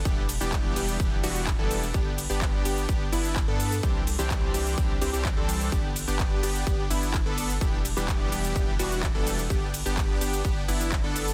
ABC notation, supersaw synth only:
X:1
M:4/4
L:1/16
Q:1/4=127
K:G
V:1 name="Supersaw synth"
[E,G,B,DG] z2 [E,G,B,DG]3 [E,G,B,DG]2 [E,G,B,DG] z [E,G,B,DF]2 z [E,G,B,DA]2 z | [B,DG] z2 [B,DG]3 [B,DG]2 [B,DG] z [B,DE]2 z [B,DA]2 z | [E,G,CDG] z2 [E,G,CDG]3 [E,G,CDG]2 [E,G,CDG] z [E,G,CDG] [E,G,CDG] z [E,G,CDA]3 | [B,DG] z2 [B,DG]3 [B,DG]2 [B,G] z [B,DE]2 z [B,DA]2 z |
[E,G,B,DG] z2 [E,G,B,DG]3 [E,G,B,DG]2 [E,G,B,DG] z [E,G,B,DF]2 z [E,G,B,DA]2 z | [B,DG] z2 [B,DG]3 [B,DG]2 [B,DG] z [B,DE]2 z [B,DA]2 z |]